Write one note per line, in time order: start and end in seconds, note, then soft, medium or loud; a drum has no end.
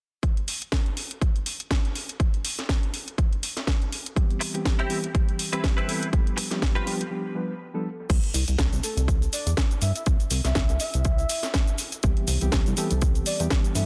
0.23 kick loud
0.23 closed hi-hat soft
0.37 closed hi-hat soft
0.48 open hi-hat loud
0.62 closed hi-hat soft
0.72 kick loud
0.72 snare loud
0.72 closed hi-hat soft
0.86 closed hi-hat soft
0.97 open hi-hat medium
1.11 closed hi-hat soft
1.22 kick loud
1.22 closed hi-hat soft
1.36 closed hi-hat soft
1.46 open hi-hat medium
1.60 closed hi-hat medium
1.71 kick medium
1.71 snare loud
1.71 closed hi-hat soft
1.85 closed hi-hat soft
1.95 open hi-hat medium
2.09 closed hi-hat soft
2.20 kick loud
2.20 closed hi-hat soft
2.34 closed hi-hat soft
2.45 open hi-hat loud
2.59 snare soft
2.59 closed hi-hat soft
2.69 kick loud
2.69 snare loud
2.69 closed hi-hat soft
2.83 closed hi-hat soft
2.94 open hi-hat medium
3.08 closed hi-hat soft
3.18 kick loud
3.18 closed hi-hat soft
3.33 closed hi-hat soft
3.43 open hi-hat loud
3.57 snare soft
3.57 closed hi-hat soft
3.67 kick loud
3.67 snare loud
3.67 closed hi-hat soft
3.82 closed hi-hat soft
3.92 open hi-hat medium
4.06 closed hi-hat soft
4.16 4.51 E3 medium
4.16 4.51 G3 medium
4.16 4.51 B3 medium
4.16 4.51 C4 medium
4.16 4.51 G4 medium
4.16 kick loud
4.16 closed hi-hat soft
4.31 closed hi-hat soft
4.41 muted clean electric guitar stroke loud
4.41 open hi-hat loud
4.54 4.87 E3 medium
4.54 4.87 G3 medium
4.54 4.87 B3 medium
4.54 4.88 C4 medium
4.54 4.88 G4 medium
4.54 muted clean electric guitar stroke soft
4.54 closed hi-hat soft
4.65 kick loud
4.65 snare loud
4.65 closed hi-hat soft
4.79 4.97 C4 medium
4.79 4.97 E4 medium
4.79 4.97 G4 medium
4.79 closed hi-hat soft
4.89 5.06 E3 medium
4.89 5.06 G3 medium
4.89 5.06 B3 medium
4.89 5.06 C4 medium
4.89 5.06 G4 loud
4.89 open hi-hat medium
5.04 closed hi-hat soft
5.14 5.49 E3 medium
5.14 5.49 G3 medium
5.14 5.50 C4 medium
5.14 5.50 G4 medium
5.14 muted clean electric guitar stroke soft
5.14 kick loud
5.14 closed hi-hat soft
5.29 closed hi-hat soft
5.39 open hi-hat loud
5.52 5.85 E3 medium
5.52 5.85 G3 medium
5.52 5.86 C4 medium
5.52 5.64 C4 medium
5.52 5.64 E4 medium
5.52 5.86 G4 loud
5.52 5.64 B4 loud
5.52 closed hi-hat medium
5.64 kick loud
5.64 snare loud
5.64 closed hi-hat soft
5.77 6.07 C4 medium
5.77 6.07 E4 medium
5.77 6.07 B4 medium
5.77 closed hi-hat soft
5.87 6.10 E3 medium
5.87 6.10 G3 medium
5.87 6.10 B3 medium
5.87 6.10 C4 medium
5.87 6.10 A4 medium
5.87 open hi-hat medium
6.03 closed hi-hat soft
6.12 6.48 F3 medium
6.12 6.48 G3 medium
6.12 6.48 B3 medium
6.12 6.48 D4 medium
6.12 6.48 G4 medium
6.12 kick loud
6.12 closed hi-hat soft
6.27 closed hi-hat soft
6.37 muted clean electric guitar stroke loud
6.37 open hi-hat loud
6.50 6.84 F3 medium
6.50 6.84 G3 medium
6.50 6.84 B3 medium
6.50 6.84 D4 medium
6.50 6.84 G4 medium
6.50 muted clean electric guitar stroke soft
6.50 snare soft
6.50 closed hi-hat soft
6.62 kick loud
6.62 snare loud
6.62 closed hi-hat soft
6.75 6.93 C4 medium
6.75 6.94 F4 medium
6.75 6.94 G4 medium
6.75 6.94 B4 loud
6.75 closed hi-hat soft
6.86 7.02 F3 medium
6.86 7.03 G3 medium
6.86 7.03 B3 medium
6.86 7.03 D4 medium
6.86 7.03 G4 loud
6.86 open hi-hat medium
7.01 closed hi-hat soft
7.10 7.33 F3 medium
7.10 7.34 G3 medium
7.10 7.34 B3 medium
7.10 7.34 D4 medium
7.10 7.34 G4 medium
7.35 7.51 F3 medium
7.35 7.52 G3 medium
7.35 7.52 B3 medium
7.35 7.52 D4 medium
7.35 7.52 B4 medium
7.74 7.88 F3 medium
7.74 7.88 G3 medium
7.74 7.88 B3 medium
7.74 7.88 D4 medium
7.74 7.88 A4 medium
8.10 8.20 C2 loud
8.10 kick loud
8.10 closed hi-hat medium
8.10 crash medium
8.10 cabasa soft
8.24 closed hi-hat soft
8.34 8.44 C2 medium
8.34 open hi-hat loud
8.34 cabasa medium
8.48 8.56 C2 medium
8.48 closed hi-hat soft
8.48 cabasa soft
8.59 8.69 C2 medium
8.59 kick loud
8.59 snare loud
8.59 closed hi-hat soft
8.59 cabasa soft
8.72 8.81 C2 medium
8.72 closed hi-hat soft
8.72 cabasa soft
8.83 9.01 A4 medium
8.83 open hi-hat medium
8.83 cabasa medium
8.97 9.28 C2 medium
8.97 closed hi-hat medium
8.97 cabasa soft
9.08 kick loud
9.08 closed hi-hat medium
9.08 cabasa soft
9.22 closed hi-hat soft
9.22 cabasa soft
9.33 9.51 D5 loud
9.33 open hi-hat loud
9.33 cabasa medium
9.46 9.55 E2 loud
9.46 closed hi-hat medium
9.46 cabasa soft
9.57 kick loud
9.57 snare loud
9.57 closed hi-hat soft
9.57 cabasa soft
9.71 closed hi-hat soft
9.71 cabasa soft
9.82 9.92 G2 medium
9.82 9.91 E5 medium
9.82 open hi-hat medium
9.82 cabasa medium
9.96 10.03 E5 medium
9.96 closed hi-hat medium
9.96 cabasa soft
10.06 10.17 C2 loud
10.06 kick loud
10.06 closed hi-hat soft
10.06 cabasa soft
10.20 closed hi-hat soft
10.20 cabasa soft
10.31 10.41 C2 medium
10.31 open hi-hat loud
10.31 cabasa medium
10.44 10.53 C2 medium
10.44 10.78 E5 medium
10.44 snare soft
10.44 closed hi-hat medium
10.44 cabasa soft
10.55 10.66 C2 medium
10.55 kick loud
10.55 snare loud
10.55 closed hi-hat soft
10.55 cabasa soft
10.69 10.78 C2 medium
10.69 closed hi-hat soft
10.69 cabasa soft
10.80 11.03 E5 medium
10.80 open hi-hat medium
10.80 cabasa medium
10.94 11.25 C2 medium
10.94 closed hi-hat medium
10.94 cabasa soft
11.05 11.75 E5 loud
11.05 kick loud
11.05 closed hi-hat medium
11.05 cabasa soft
11.18 closed hi-hat soft
11.18 cabasa soft
11.29 open hi-hat loud
11.29 cabasa medium
11.43 snare soft
11.43 closed hi-hat medium
11.43 cabasa soft
11.54 kick loud
11.54 snare loud
11.54 closed hi-hat soft
11.54 cabasa soft
11.67 closed hi-hat soft
11.67 cabasa soft
11.78 open hi-hat medium
11.78 cabasa medium
11.92 closed hi-hat medium
11.92 cabasa soft
12.03 12.14 C2 loud
12.03 12.38 E3 medium
12.03 12.38 G3 medium
12.03 12.39 B3 medium
12.03 12.39 C4 medium
12.03 12.39 G4 medium
12.03 kick loud
12.03 closed hi-hat soft
12.03 cabasa soft
12.17 closed hi-hat soft
12.28 12.38 C2 medium
12.28 open hi-hat loud
12.28 cabasa medium
12.41 12.50 C2 medium
12.41 12.74 E3 medium
12.41 12.75 G3 medium
12.41 12.75 B3 medium
12.41 12.75 C4 medium
12.41 12.75 G4 medium
12.41 closed hi-hat soft
12.41 cabasa soft
12.52 12.63 C2 medium
12.52 kick loud
12.52 snare loud
12.52 closed hi-hat soft
12.52 cabasa soft
12.66 12.75 C2 medium
12.66 closed hi-hat soft
12.66 cabasa soft
12.77 12.93 E3 loud
12.77 12.93 G3 medium
12.77 12.93 B3 medium
12.77 12.93 C4 medium
12.77 12.93 G4 loud
12.77 12.95 A4 medium
12.77 open hi-hat medium
12.77 cabasa medium
12.91 13.22 C2 medium
12.91 closed hi-hat soft
12.91 cabasa soft
13.02 13.37 E3 medium
13.02 13.37 G3 medium
13.02 13.37 B3 medium
13.02 13.37 C4 medium
13.02 13.37 G4 medium
13.02 kick loud
13.02 closed hi-hat soft
13.02 cabasa soft
13.15 closed hi-hat soft
13.15 cabasa soft
13.26 13.44 D5 medium
13.26 open hi-hat loud
13.26 cabasa medium
13.40 13.48 E2 loud
13.40 13.73 E3 medium
13.40 13.73 G3 medium
13.40 13.73 B3 medium
13.40 13.73 C4 medium
13.40 13.73 G4 loud
13.40 closed hi-hat medium
13.40 cabasa soft
13.50 kick loud
13.50 snare loud
13.50 closed hi-hat soft
13.50 cabasa soft
13.64 closed hi-hat soft
13.64 cabasa soft
13.75 13.86 G2 medium
13.75 13.86 E3 medium
13.75 13.86 G3 medium
13.75 13.86 B3 medium
13.75 13.86 C4 medium
13.75 13.86 A4 loud
13.75 13.84 E5 medium
13.75 open hi-hat medium
13.75 cabasa medium